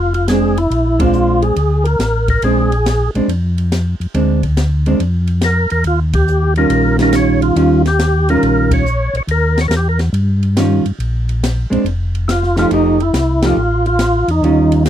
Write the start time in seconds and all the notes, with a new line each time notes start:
Already playing: F1 F4
0.14 F4, ride
0.28 G#3 C4 D4 G#4, snare, hi-hat pedal, ride
0.57 E4, ride
0.70 A#1, ride
0.99 G#3 C4 D4 F4, kick, ride
1.13 hi-hat pedal
1.42 G#4, ride
1.56 D2, ride
1.84 A#4, ride
1.99 A1, snare, hi-hat pedal, ride
2.28 A#4, kick, ride
2.42 A#1 G#3 C4 D4 G#4, ride
2.72 ride
2.86 snare, hi-hat pedal, ride
3.15 A#1 G#3 C4 D4, ride
3.28 F2, ride
3.58 ride
3.72 snare, hi-hat pedal, ride
4.00 F2, ride
4.14 D2 G#3 C4 D4, ride
4.43 kick, ride
4.57 snare, hi-hat pedal, ride
4.86 G#3 C4 D4, ride
5.00 F2, ride
5.27 ride
5.41 A#4, snare, hi-hat pedal, ride
5.70 E2 A#4, ride
5.84 D#2 F4, ride
6.13 G4, kick, ride
6.28 hi-hat pedal
6.56 D#3 G3 C#4 F4 A#4, ride
6.70 A#1, ride
6.99 D#3 G3 C#4 F4 A#4, snare, ride
7.12 C#5, snare, hi-hat pedal, ride
7.42 F4, ride
7.56 D#2 D#3 G3 C#4 F4, ride
7.86 G4, snare, ride
7.99 snare, hi-hat pedal, ride
8.28 D#3 G3 C#4 F4 A#4, ride
8.42 A#1, ride
8.71 C#5, kick, ride
8.86 hi-hat pedal
9.13 A#1 C#5, ride
9.27 D#2 A#4, ride
9.58 C#5, snare, ride
9.68 E2 A#4, snare, hi-hat pedal, ride
9.77 G4
9.89 A#4
9.99 snare, ride
10.13 G2, ride
10.43 ride
10.57 D#3 G3 C#4 F4, snare, hi-hat pedal, ride
10.85 G2, ride
10.98 A#1, ride
11.29 ride
11.44 snare, hi-hat pedal, ride
11.70 A#1 G#3 C4 D4, ride
11.84 F1, ride
12.15 ride
12.28 E4 F4, snare, hi-hat pedal, ride
12.43 snare
12.56 F3 A3 D#4 F4 G4, snare, ride
12.71 F1 F3 A3 D#4 G4, ride
13.00 E4, ride
13.13 C2, snare, hi-hat pedal, ride
13.42 F3 A3 D#4 F4 G4, snare, ride
13.56 A1
13.86 F4, ride
13.99 snare, hi-hat pedal, ride
14.28 E2 D#4, ride
14.42 D#2 D#3 G3 C#4 F4, ride
14.72 ride
14.86 snare, hi-hat pedal, ride